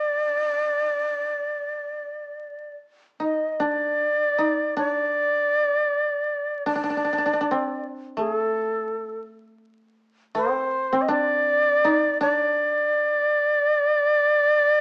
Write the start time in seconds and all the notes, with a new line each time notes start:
Already playing: D4 D5
3.20 D#4 D#5
3.52 D#5
3.60 D4 D5
4.38 D#4
4.77 D4 D5
6.66 D4 D5
6.75 D4
6.84 D4
6.90 D4
6.97 D4
7.04 D4
7.13 D4
7.18 D4
7.26 D4
7.33 D4
7.41 D4
7.51 C4
8.17 A3 G#4
8.36 A4
10.35 C4 C5
10.93 C4
11.02 D#5
11.08 D4 D5
11.85 D#4
12.21 D4 D5